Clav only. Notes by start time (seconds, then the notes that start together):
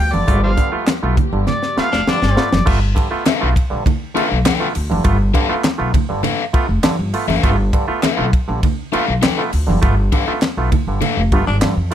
0.13 G2 D3
0.27 A3 B3 F4
0.57 G2 D3
0.72 A3 B3 F4
1.03 A3 B3 F4
1.33 G2 D3
1.77 A3 B3 F4
2.07 G2 D3
2.36 A3 B3 F4
2.51 B3 F4
2.66 A3 B3 F4
2.95 G2 D3
3.11 A3 B3 F4
3.41 A3 B3 F4
3.70 G2 D3
4.14 A3 B3 F4
4.60 A3 B3 F4
4.90 G2 D3
5.04 A3 B3 F4
5.34 G2 D3
5.49 A3 B3 F4
5.78 A3 B3 F4
6.09 G2 D3
6.53 A3 B3 F4
6.83 G2 D3
7.14 A3 B3 F4
7.28 B3 F4
7.43 A3 B3 F4
7.73 G2 D3
7.88 A3 B3 F4
8.17 A3 B3 F4
8.48 G2 D3
8.92 A3 B3 F4
9.38 A3 B3 F4
9.67 G2 D3
9.82 A3 B3 F4
10.12 G2 D3
10.28 A3 B3 F4
10.58 A3 B3 F4
10.88 G2 D3
11.32 A3 B3 F4
11.63 G2 D3
11.91 A3